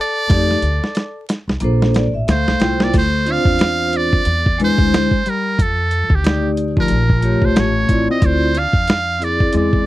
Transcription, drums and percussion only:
0.30 kick, snare, closed hi-hat
0.51 snare
0.62 closed hi-hat
0.84 snare
0.95 snare, closed hi-hat
1.29 snare, closed hi-hat
1.49 snare
1.60 closed hi-hat
1.82 snare
1.94 snare, closed hi-hat
2.28 snare, closed hi-hat
2.48 snare
2.60 snare, closed hi-hat
2.80 snare
2.94 kick, closed hi-hat, crash
3.27 closed hi-hat
3.45 kick
3.59 snare, closed hi-hat
3.93 closed hi-hat
4.13 kick
4.25 closed hi-hat
4.46 kick
4.60 closed hi-hat
4.78 kick
4.94 snare, closed hi-hat
5.11 kick
5.26 closed hi-hat
5.59 kick, closed hi-hat
5.91 closed hi-hat
6.10 kick
6.24 snare, closed hi-hat
6.57 closed hi-hat
6.77 kick
6.88 closed hi-hat
7.10 kick
7.22 closed hi-hat
7.42 kick
7.56 snare, closed hi-hat
7.89 kick, closed hi-hat
8.22 kick, closed hi-hat
8.55 closed hi-hat
8.73 kick
8.88 snare, closed hi-hat
9.22 closed hi-hat
9.40 kick
9.53 closed hi-hat
9.73 kick

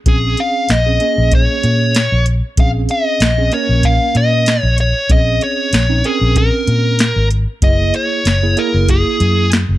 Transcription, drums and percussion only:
0.06 kick, closed hi-hat
0.37 closed hi-hat
0.69 snare, closed hi-hat
1.00 closed hi-hat
1.32 kick, closed hi-hat
1.63 closed hi-hat
1.95 snare, closed hi-hat
2.26 closed hi-hat
2.57 kick, closed hi-hat
2.89 closed hi-hat
3.20 snare, closed hi-hat
3.52 closed hi-hat
3.83 kick, closed hi-hat
4.15 closed hi-hat
4.46 snare, closed hi-hat
4.78 closed hi-hat
5.10 kick, closed hi-hat
5.41 closed hi-hat
5.73 snare, closed hi-hat
6.04 closed hi-hat
6.36 kick, closed hi-hat
6.67 closed hi-hat
6.99 snare, closed hi-hat
7.31 closed hi-hat
7.62 kick, closed hi-hat
7.94 closed hi-hat
8.25 snare, closed hi-hat
8.57 closed hi-hat
8.88 kick, closed hi-hat
9.20 closed hi-hat
9.52 snare, closed hi-hat

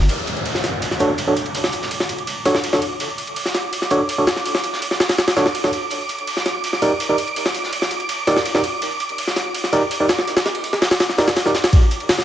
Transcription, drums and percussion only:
0.00 snare
0.09 closed hi-hat, ride
0.18 closed hi-hat
0.27 closed hi-hat, ride
0.37 ride
0.46 open hi-hat, ride
0.55 snare
0.64 snare, closed hi-hat, ride
0.82 closed hi-hat, ride
0.91 snare
0.99 closed hi-hat, ride
1.18 closed hi-hat, ride
1.36 closed hi-hat, ride
1.46 ride
1.54 closed hi-hat, ride
1.63 snare
1.72 closed hi-hat, ride
1.82 snare
1.91 closed hi-hat, ride
1.99 snare
2.09 closed hi-hat, ride
2.18 ride
2.27 closed hi-hat, ride
2.45 snare, closed hi-hat, ride
2.55 snare
2.64 closed hi-hat, ride
2.73 snare, closed hi-hat
2.82 closed hi-hat, ride
3.00 closed hi-hat, ride
3.09 closed hi-hat
3.18 closed hi-hat, ride
3.27 ride
3.36 open hi-hat, ride
3.45 snare
3.54 snare, closed hi-hat, ride
3.73 closed hi-hat, ride
3.82 snare
3.90 closed hi-hat, ride
4.09 closed hi-hat, ride
4.27 snare, closed hi-hat, ride
4.36 snare
4.46 closed hi-hat, ride
4.55 snare
4.64 closed hi-hat, ride
4.73 snare
4.82 closed hi-hat, ride
4.91 snare
5.00 snare, open hi-hat, ride
5.09 snare, ride
5.18 snare, closed hi-hat, ride
5.28 snare, ride
5.37 snare, closed hi-hat, ride
5.46 snare
5.55 closed hi-hat, ride
5.64 snare, closed hi-hat
5.73 closed hi-hat, ride
5.90 closed hi-hat, ride
6.00 closed hi-hat
6.09 closed hi-hat, ride
6.19 ride
6.27 open hi-hat, ride
6.37 snare
6.46 snare, closed hi-hat, ride
6.64 closed hi-hat, ride
6.73 snare
6.82 closed hi-hat, ride
7.00 closed hi-hat, ride
7.18 closed hi-hat, ride
7.27 ride
7.36 closed hi-hat, ride
7.44 snare
7.55 closed hi-hat, ride
7.64 snare
7.73 closed hi-hat, ride
7.82 snare
7.91 closed hi-hat, ride
8.00 ride
8.09 closed hi-hat, ride
8.27 snare, closed hi-hat, ride
8.36 snare
8.45 closed hi-hat, ride
8.55 snare, closed hi-hat
8.64 closed hi-hat, ride
8.82 closed hi-hat, ride
8.91 closed hi-hat
9.00 closed hi-hat, ride
9.09 ride
9.18 open hi-hat, ride
9.27 snare
9.36 snare, closed hi-hat, ride
9.55 closed hi-hat, ride
9.64 snare
9.73 closed hi-hat, ride
9.91 closed hi-hat, ride
10.09 snare, closed hi-hat, ride
10.18 snare
10.27 closed hi-hat, ride
10.36 snare, ride
10.45 snare, closed hi-hat
10.55 ride
10.64 closed hi-hat, ride
10.73 snare
10.82 snare, closed hi-hat, ride
10.91 snare, ride
11.00 snare, closed hi-hat, ride
11.09 snare
11.18 snare, closed hi-hat, ride
11.28 snare, ride
11.36 snare, closed hi-hat, ride
11.46 snare, closed hi-hat
11.54 snare, closed hi-hat, ride
11.64 snare, ride
11.72 kick, closed hi-hat, ride
11.82 closed hi-hat
11.91 closed hi-hat, ride
12.00 ride
12.09 snare, open hi-hat, ride
12.18 snare

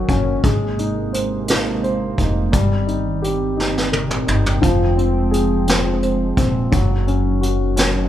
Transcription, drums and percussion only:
0.09 kick, closed hi-hat
0.44 kick, closed hi-hat
0.79 closed hi-hat
1.14 closed hi-hat
1.48 snare, closed hi-hat
1.84 closed hi-hat
2.18 kick, closed hi-hat
2.53 kick, closed hi-hat
2.88 closed hi-hat
3.24 closed hi-hat
3.60 snare
3.78 snare
3.93 high tom
4.11 mid tom
4.28 mid tom
4.46 floor tom
4.63 kick, closed hi-hat
4.98 closed hi-hat
5.33 closed hi-hat
5.67 snare, closed hi-hat
6.03 closed hi-hat
6.37 kick, closed hi-hat
6.72 kick, closed hi-hat
7.08 closed hi-hat
7.43 closed hi-hat
7.77 snare, closed hi-hat

